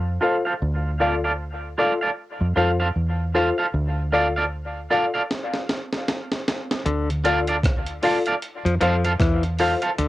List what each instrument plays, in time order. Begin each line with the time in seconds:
Already playing: fingered electric bass F2
0.21 clean electric guitar F4 A4 C5 F5, upright piano F4 A4 C5 F5
0.46 clean electric guitar F4 A4 C5 F5
0.62 fingered electric bass D2
1.00 upright piano F4 A4 D5 F5, clean electric guitar F4 A4 D5 F5
1.24 clean electric guitar F4 A4 D5 F5
1.78 clean electric guitar F4 A4 D5 F5, upright piano F4 A4 D5 F5
2.01 clean electric guitar F4 A4 D5 F5
2.41 fingered electric bass F2
2.56 fingered electric bass F2, upright piano F4 A4 C5 F5, clean electric guitar F4 A4 C5 F5
2.80 clean electric guitar F4 A4 C5 F5
2.96 fingered electric bass E2
3.34 upright piano F4 A4 C5 F5, clean electric guitar F4 A4 C5 F5
3.58 clean electric guitar F4 A4 C5 F5
3.74 fingered electric bass D2
4.12 upright piano F4 A4 D5 F5, clean electric guitar F4 A4 D5 F5
4.36 clean electric guitar F4 A4 D5 F5
4.90 upright piano F4 A4 D5 F5, clean electric guitar F4 A4 D5 F5
5.14 clean electric guitar F4 A4 D5 F5
5.31 snare
5.54 snare
5.69 snare
5.93 snare
6.08 snare
6.32 snare
6.48 snare
6.71 snare
6.85 fingered electric bass D2, clav D3, closed hi-hat
7.10 closed hi-hat
7.24 clean electric guitar F4 A4 D5 F5, upright piano F4 A4 D5 F5, closed hi-hat
7.47 clean electric guitar F4 A4 D5 F5, closed hi-hat
7.63 kick, cross-stick, closed hi-hat
7.86 closed hi-hat
8.02 upright piano F4 A4 D5 F5, clean electric guitar F4 A4 D5 F5, open hi-hat
8.26 clean electric guitar F4 A4 D5 F5, closed hi-hat
8.42 closed hi-hat
8.65 fingered electric bass F2, clav F3, closed hi-hat
8.81 fingered electric bass F2, clav F3, clean electric guitar F4 A4 C5 F5, upright piano F4 A4 C5 F5, closed hi-hat
9.05 clean electric guitar F4 A4 C5 F5, closed hi-hat
9.20 fingered electric bass E2, clav E3, kick, cross-stick, closed hi-hat
9.43 closed hi-hat
9.59 upright piano F4 A4 C5 F5, clean electric guitar F4 A4 C5 F5, open hi-hat
9.82 clean electric guitar F4 A4 C5 F5, closed hi-hat
9.98 fingered electric bass D2, clav D3, closed hi-hat